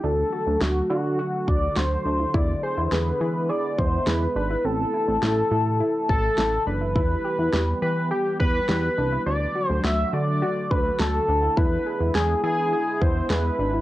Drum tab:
SD |--o---o-|--o---o-|--o---o-|--o---o-|
BD |-----o--|o----o--|-----o--|o----o--|

SD |--o---o-|--o---o-|
BD |-----o--|o----o--|